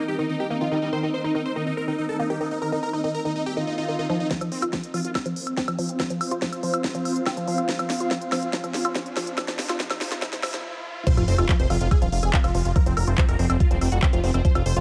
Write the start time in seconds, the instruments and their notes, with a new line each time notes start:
Already playing: synth drone C4, ambient pad D#4 A#4 D#5
0.08 supersaw synth G4
0.19 synth arpeggio sound D#3, supersaw synth D#4
0.29 supersaw synth D#4
0.40 supersaw synth G4
0.50 synth arpeggio sound A#3, supersaw synth D#4
0.61 synth arpeggio sound D#3, supersaw synth F4
0.71 synth arpeggio sound D#3, wobble bass G3, supersaw synth D#4
0.82 wobble bass G3, supersaw synth D#4
0.93 synth arpeggio sound D#3, supersaw synth C5
1.03 synth arpeggio sound D#3, supersaw synth D#4
1.14 supersaw synth C5
1.24 synth arpeggio sound D#4, supersaw synth D#4
1.35 synth arpeggio sound D#3, supersaw synth D#4
1.45 supersaw synth C5
1.56 synth arpeggio sound D#3, supersaw synth D#4
1.67 supersaw synth D#4
1.77 supersaw synth A#4
1.88 synth arpeggio sound D#3, supersaw synth D#4
1.98 supersaw synth D#4
2.09 supersaw synth A4
2.19 synth arpeggio sound A#3, supersaw synth D#4
2.30 synth arpeggio sound D#3, supersaw synth G4
2.41 synth arpeggio sound D#3, supersaw synth D#4
2.51 supersaw synth D#4
2.62 synth arpeggio sound D#3, supersaw synth A#4
2.72 synth arpeggio sound D#3, supersaw synth D#4
2.83 supersaw synth A#4
2.93 synth arpeggio sound D#4, supersaw synth D#4
3.04 synth arpeggio sound D#3, supersaw synth D#4
3.14 supersaw synth A#4
3.25 synth arpeggio sound D#3, supersaw synth D#4
3.36 supersaw synth D#4
3.46 supersaw synth G4, swell
3.57 synth arpeggio sound D#3, supersaw synth D#4
3.67 supersaw synth D#4
3.78 supersaw synth D#4
3.88 synth arpeggio sound D#3, supersaw synth D#4
3.99 synth arpeggio sound D#3, supersaw synth D#4
4.10 synth arpeggio sound F3, supersaw synth D#4
4.20 supersaw synth D#4
4.31 synth arpeggio sound F3, synth drone C4, ambient pad F4, kick, snare, closed hi-hat, riser
4.41 synth arpeggio sound F3, closed hi-hat, high woodblock
4.52 wobble bass C4, ambient pad C5, open hi-hat
4.62 synth arpeggio sound F4, closed hi-hat, high woodblock
4.73 synth arpeggio sound F3, kick, snare, closed hi-hat
4.77 ambient pad F5
4.83 closed hi-hat
4.94 synth arpeggio sound F3, wobble bass F4, open hi-hat, high woodblock
5.05 wobble bass F4, closed hi-hat
5.15 kick, snare, closed hi-hat, high woodblock
5.26 synth arpeggio sound F3, closed hi-hat
5.36 open hi-hat
5.47 closed hi-hat, high woodblock
5.57 synth arpeggio sound C4, kick, snare, closed hi-hat
5.68 synth arpeggio sound F3, closed hi-hat, high woodblock
5.79 synth arpeggio sound F3, open hi-hat
5.89 closed hi-hat
6.00 synth arpeggio sound F3, kick, snare, closed hi-hat, high woodblock
6.10 synth arpeggio sound F3, closed hi-hat
6.21 open hi-hat, high woodblock
6.31 synth arpeggio sound F4, closed hi-hat
6.42 synth arpeggio sound F3, kick, snare, closed hi-hat
6.52 closed hi-hat, high woodblock
6.63 synth arpeggio sound F3, open hi-hat
6.74 closed hi-hat, high woodblock
6.84 kick, snare, closed hi-hat
6.95 synth arpeggio sound F3, closed hi-hat
7.05 open hi-hat, high woodblock
7.16 closed hi-hat
7.26 synth arpeggio sound C4, kick, snare, closed hi-hat, high woodblock
7.37 synth arpeggio sound F3, closed hi-hat
7.48 synth arpeggio sound F3, open hi-hat
7.58 closed hi-hat, high woodblock
7.69 synth arpeggio sound F3, kick, snare, closed hi-hat
7.79 synth arpeggio sound F3, closed hi-hat, high woodblock
7.90 snare, open hi-hat
8.00 synth arpeggio sound F4, closed hi-hat
8.11 synth arpeggio sound F3, kick, snare, closed hi-hat, high woodblock
8.21 closed hi-hat
8.32 synth arpeggio sound F3, snare, open hi-hat, high woodblock
8.43 closed hi-hat
8.53 synth arpeggio sound F3, kick, snare, closed hi-hat
8.64 synth arpeggio sound F3, closed hi-hat, high woodblock
8.74 snare, open hi-hat
8.85 synth arpeggio sound F4, closed hi-hat, high woodblock
8.95 synth arpeggio sound F3, kick, snare, closed hi-hat
9.06 closed hi-hat
9.17 synth arpeggio sound F3, snare, open hi-hat, high woodblock
9.27 closed hi-hat
9.38 synth arpeggio sound F3, kick, snare, closed hi-hat, high woodblock
9.48 synth arpeggio sound F3, snare, closed hi-hat
9.59 snare, open hi-hat
9.69 synth arpeggio sound F4, snare, closed hi-hat, high woodblock
9.80 synth arpeggio sound F3, kick, snare, closed hi-hat
9.91 synth arpeggio sound F3, snare, closed hi-hat, high woodblock
10.01 snare, open hi-hat
10.12 synth arpeggio sound F4, snare, closed hi-hat
10.22 synth arpeggio sound F3, kick, snare, closed hi-hat, high woodblock
10.33 synth arpeggio sound F3, snare, closed hi-hat
10.43 synth arpeggio sound F3, snare, open hi-hat, high woodblock
10.54 synth arpeggio sound F3, snare, closed hi-hat
11.07 synth arpeggio sound F3, synth drone F3 F4, supersaw synth C5, kick, closed hi-hat, crash, sub drop
11.17 analog synth bass F1, synth arpeggio sound F3, supersaw synth F4, closed hi-hat, high woodblock
11.28 analog synth bass F1, wobble bass C4, supersaw synth C5, open hi-hat
11.38 analog synth bass F1, synth arpeggio sound F4, supersaw synth F4, closed hi-hat, high woodblock
11.49 synth arpeggio sound F3, supersaw synth F4, kick, clap, closed hi-hat
11.60 analog synth bass F1, supersaw synth C5, closed hi-hat
11.70 analog synth bass F1, synth arpeggio sound F3, supersaw synth F4, wobble bass F4, open hi-hat, high woodblock
11.81 analog synth bass F1, supersaw synth F4, wobble bass F4, closed hi-hat
11.91 supersaw synth G#4, kick, closed hi-hat, high woodblock
12.02 analog synth bass D#1, synth arpeggio sound F3, supersaw synth F4, closed hi-hat
12.12 analog synth bass F1, supersaw synth F4, open hi-hat
12.23 analog synth bass F1, supersaw synth G#4, closed hi-hat, high woodblock
12.33 synth arpeggio sound C4, supersaw synth F4, kick, clap, closed hi-hat
12.44 analog synth bass F1, synth arpeggio sound F3, supersaw synth F4, closed hi-hat, high woodblock
12.55 analog synth bass F1, synth arpeggio sound F3, supersaw synth F4, open hi-hat
12.65 analog synth bass F1, supersaw synth F4, closed hi-hat
12.76 synth arpeggio sound F3, supersaw synth A#4, kick, closed hi-hat, high woodblock
12.86 analog synth bass F1, synth arpeggio sound F3, supersaw synth C4, closed hi-hat
12.97 analog synth bass F1, supersaw synth A#4, open hi-hat, high woodblock
13.07 analog synth bass F1, supersaw synth C4, synth arpeggio sound F4, closed hi-hat
13.18 synth arpeggio sound F3, supersaw synth C4, kick, clap, closed hi-hat
13.29 analog synth bass F1, supersaw synth A#4, closed hi-hat, high woodblock
13.39 analog synth bass F1, synth arpeggio sound F3, supersaw synth C4, open hi-hat
13.50 analog synth bass F1, supersaw synth C4, closed hi-hat, high woodblock
13.60 supersaw synth F4, kick, closed hi-hat
13.71 analog synth bass D#1, synth arpeggio sound F3, supersaw synth C4, closed hi-hat
13.81 analog synth bass F1, supersaw synth C4, open hi-hat, high woodblock
13.92 analog synth bass F1, supersaw synth F#4, closed hi-hat
14.02 supersaw synth C4, synth arpeggio sound C4, kick, clap, closed hi-hat, high woodblock
14.13 analog synth bass F1, synth arpeggio sound F3, supersaw synth F4, closed hi-hat
14.24 analog synth bass F1, synth arpeggio sound F3, supersaw synth C4, open hi-hat
14.34 analog synth bass F1, supersaw synth C4, closed hi-hat, high woodblock
14.45 synth arpeggio sound F3, supersaw synth C5, kick, closed hi-hat
14.55 analog synth bass F1, synth arpeggio sound F3, supersaw synth F4, closed hi-hat, high woodblock
14.66 analog synth bass F1, supersaw synth C5, open hi-hat
14.76 analog synth bass F1, supersaw synth F4, synth arpeggio sound F4, closed hi-hat